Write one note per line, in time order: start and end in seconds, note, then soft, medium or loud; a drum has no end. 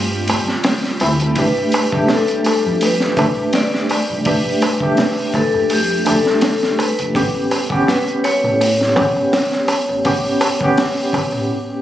0.00 0.31 G2 medium
0.00 11.49 G3 medium
0.00 1.01 A3 medium
0.00 1.01 C4 medium
0.00 1.40 F4 medium
0.00 11.49 G4 medium
0.12 darbuka tek soft
0.28 0.46 D1 loud
0.28 open hi-hat medium
0.28 darbuka tek medium
0.48 snare soft
0.48 darbuka tek soft
0.64 snare loud
0.64 open hi-hat medium
0.64 darbuka tek soft
0.84 snare soft
0.84 darbuka tek soft
1.00 1.18 D2 medium
1.00 1.33 A3 medium
1.00 1.33 C4 medium
1.00 1.34 E4 medium
1.00 open hi-hat medium
1.00 darbuka tek medium
1.20 1.36 D2 loud
1.20 closed hi-hat soft
1.20 darbuka tek soft
1.35 1.54 F1 loud
1.35 1.88 A3 medium
1.35 1.88 D4 medium
1.35 1.89 G4 medium
1.35 kick medium
1.35 open hi-hat medium
1.35 darbuka tek soft
1.40 2.13 B4 loud
1.58 darbuka tek soft
1.72 open hi-hat medium
1.72 darbuka tek medium
1.92 2.08 F1 loud
1.92 3.14 A3 medium
1.92 3.14 D4 medium
1.92 3.15 G4 medium
1.92 kick medium
1.92 darbuka tek soft
2.08 snare loud
2.08 open hi-hat medium
2.08 darbuka tek medium
2.13 2.79 A4 medium
2.28 closed hi-hat soft
2.28 darbuka tek soft
2.44 open hi-hat medium
2.44 darbuka tek medium
2.66 3.19 F2 medium
2.66 darbuka tek soft
2.81 3.58 B4 loud
2.81 open hi-hat medium
2.81 darbuka tek medium
3.00 snare soft
3.00 darbuka tek soft
3.17 3.35 C2 medium
3.17 4.22 A3 medium
3.17 4.22 D4 medium
3.17 4.23 G4 medium
3.17 kick medium
3.17 open hi-hat medium
3.17 darbuka tek medium
3.39 darbuka tek soft
3.53 4.29 D5 loud
3.53 snare loud
3.53 open hi-hat medium
3.53 darbuka tek soft
3.74 snare soft
3.74 darbuka tek soft
3.89 open hi-hat medium
3.89 darbuka tek medium
4.10 4.25 F1 loud
4.10 darbuka tek soft
4.25 4.43 F1 loud
4.25 4.77 A3 medium
4.25 4.77 D4 medium
4.25 4.78 G4 medium
4.25 5.39 B4 loud
4.25 kick loud
4.25 open hi-hat medium
4.25 darbuka tek soft
4.45 darbuka tek soft
4.62 open hi-hat medium
4.62 darbuka tek medium
4.80 4.96 F1 loud
4.80 6.02 A3 medium
4.80 6.03 D4 medium
4.80 6.04 G4 medium
4.80 kick medium
4.80 darbuka tek soft
4.97 snare loud
4.97 open hi-hat medium
4.97 darbuka tek soft
5.18 darbuka tek soft
5.34 5.73 A4 medium
5.34 kick medium
5.34 open hi-hat medium
5.34 darbuka tek medium
5.54 6.09 F2 medium
5.54 darbuka tek soft
5.70 6.09 G4 medium
5.70 open hi-hat medium
5.70 darbuka tek soft
5.91 darbuka tek soft
6.05 6.24 C2 loud
6.05 7.11 A3 medium
6.05 7.11 D4 medium
6.05 7.12 G4 medium
6.05 open hi-hat medium
6.05 darbuka tek medium
6.10 6.83 A4 medium
6.26 snare soft
6.26 darbuka tek soft
6.41 snare loud
6.41 open hi-hat medium
6.41 darbuka tek soft
6.63 snare medium
6.63 darbuka tek soft
6.79 7.49 B4 medium
6.79 open hi-hat medium
6.79 darbuka tek medium
6.99 7.14 F1 loud
6.99 closed hi-hat soft
6.99 darbuka tek soft
7.15 7.33 A1 loud
7.15 7.66 B3 medium
7.15 7.67 C#4 medium
7.15 7.67 G4 medium
7.15 kick loud
7.15 open hi-hat medium
7.15 darbuka tek soft
7.35 darbuka tek soft
7.51 open hi-hat medium
7.51 darbuka tek medium
7.70 7.86 A1 medium
7.70 8.92 B3 medium
7.70 8.92 C#4 medium
7.70 8.93 G4 medium
7.70 kick medium
7.70 darbuka tek soft
7.87 8.26 B4 medium
7.87 snare loud
7.87 open hi-hat medium
7.87 darbuka tek soft
8.07 closed hi-hat soft
8.07 darbuka tek soft
8.24 11.45 C#5 loud
8.24 open hi-hat medium
8.24 darbuka tek medium
8.44 8.99 A2 medium
8.44 darbuka tek soft
8.61 open hi-hat medium
8.61 darbuka tek soft
8.80 snare soft
8.80 darbuka tek soft
8.95 9.14 E1 loud
8.95 10.00 B3 medium
8.95 10.01 C#4 medium
8.95 10.02 G4 medium
8.95 kick loud
8.95 open hi-hat medium
8.95 darbuka tek medium
9.16 darbuka tek soft
9.33 snare loud
9.33 open hi-hat medium
9.33 darbuka tek soft
9.52 snare soft
9.52 darbuka tek soft
9.68 open hi-hat medium
9.68 darbuka tek medium
9.89 10.03 A1 loud
9.89 darbuka tek soft
10.05 10.22 A1 loud
10.05 10.56 B3 medium
10.05 10.56 C#4 medium
10.05 10.57 G4 medium
10.05 kick loud
10.05 open hi-hat medium
10.05 darbuka tek soft
10.24 darbuka tek soft
10.41 open hi-hat medium
10.41 darbuka tek medium
10.60 10.76 A1 medium
10.60 11.82 B3 medium
10.60 11.82 C#4 medium
10.60 kick medium
10.60 darbuka tek soft
10.64 11.82 G4 medium
10.77 snare loud
10.77 open hi-hat medium
10.77 darbuka tek soft
10.97 darbuka tek soft
11.13 kick medium
11.13 open hi-hat medium
11.13 darbuka tek medium
11.32 11.50 A2 medium
11.32 darbuka tek soft